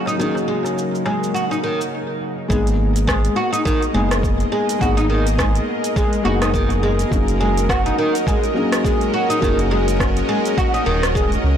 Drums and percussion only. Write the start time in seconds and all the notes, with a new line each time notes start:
0.06 darbuka ka, shaker
0.21 shaker
0.35 darbuka ka, shaker
0.64 darbuka tek, shaker
0.78 shaker
0.95 shaker
1.06 darbuka tek
1.24 shaker
1.36 shaker
1.52 shaker
1.81 shaker
2.50 kick, shaker
2.67 closed hi-hat, shaker
2.96 closed hi-hat, shaker
3.08 kick, cross-stick, shaker
3.25 closed hi-hat, shaker
3.54 closed hi-hat, shaker
3.66 kick, shaker
3.82 closed hi-hat, shaker
4.11 cross-stick, closed hi-hat, shaker
4.23 kick, shaker
4.40 closed hi-hat, shaker
4.69 closed hi-hat, shaker
4.81 kick, shaker
4.98 closed hi-hat, shaker
5.27 closed hi-hat, shaker
5.39 kick, cross-stick, shaker
5.55 closed hi-hat, shaker
5.84 closed hi-hat, shaker
5.96 kick, shaker
6.13 closed hi-hat, shaker
6.42 cross-stick, closed hi-hat, shaker
6.54 kick, shaker
6.70 closed hi-hat, shaker
6.99 closed hi-hat, shaker
7.12 kick, shaker
7.28 closed hi-hat, shaker
7.57 closed hi-hat, shaker
7.69 kick, cross-stick, shaker
7.86 closed hi-hat, shaker
8.15 closed hi-hat, shaker
8.27 kick, shaker
8.44 closed hi-hat, shaker
8.72 cross-stick, closed hi-hat, shaker
8.85 kick, shaker
9.01 closed hi-hat, shaker
9.30 closed hi-hat, shaker
9.42 kick, shaker
9.59 closed hi-hat, shaker
9.88 closed hi-hat, shaker
10.00 kick, cross-stick, shaker
10.17 closed hi-hat, shaker
10.45 closed hi-hat, shaker
10.58 kick, shaker
10.74 closed hi-hat, shaker
11.03 cross-stick, closed hi-hat, shaker
11.15 kick, shaker
11.32 closed hi-hat, shaker